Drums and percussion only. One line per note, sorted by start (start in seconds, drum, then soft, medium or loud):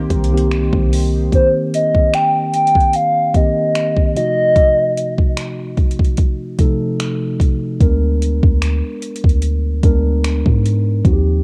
0.10 kick loud
0.10 closed hi-hat medium
0.24 closed hi-hat medium
0.38 closed hi-hat soft
0.51 finger snap loud
0.51 closed hi-hat medium
0.73 kick loud
0.93 open hi-hat medium
1.32 kick loud
1.32 closed hi-hat medium
1.74 closed hi-hat medium
1.94 kick medium
2.13 finger snap loud
2.13 closed hi-hat medium
2.54 closed hi-hat medium
2.67 closed hi-hat medium
2.75 kick medium
2.81 closed hi-hat soft
2.93 closed hi-hat medium
3.35 kick medium
3.35 closed hi-hat medium
3.75 finger snap loud
3.75 closed hi-hat medium
3.97 kick medium
4.17 closed hi-hat medium
4.56 kick loud
4.56 closed hi-hat medium
4.98 closed hi-hat medium
5.18 kick medium
5.37 finger snap loud
5.37 closed hi-hat medium
5.77 kick medium
5.77 closed hi-hat medium
5.91 closed hi-hat medium
5.99 kick medium
6.05 closed hi-hat soft
6.17 kick medium
6.17 closed hi-hat medium
6.59 kick medium
6.59 closed hi-hat medium
7.00 finger snap loud
7.00 closed hi-hat medium
7.40 kick medium
7.40 closed hi-hat medium
7.80 kick loud
7.80 closed hi-hat medium
8.22 closed hi-hat medium
8.43 kick medium
8.62 finger snap loud
8.62 closed hi-hat medium
9.02 closed hi-hat medium
9.16 closed hi-hat medium
9.24 kick medium
9.29 closed hi-hat soft
9.42 closed hi-hat medium
9.83 kick medium
9.83 closed hi-hat medium
10.24 finger snap loud
10.24 closed hi-hat medium
10.46 kick medium
10.66 closed hi-hat medium
11.05 kick loud
11.05 closed hi-hat medium